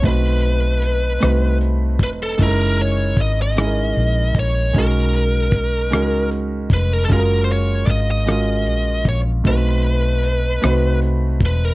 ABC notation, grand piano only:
X:1
M:6/8
L:1/8
Q:3/8=51
K:Blyd
V:1 name="Grand piano"
[=A,=CDFB]2 z [A,CDFB]2 z | [G,CD=E=A^A]2 z [G,CDEGA]2 z | [G,CDFA]2 z [G,CDFA]2 z | [G,CEFGA]2 z [G,CEFA]2 z |
[=A,=CDFB]2 z [A,CDFB]2 z |]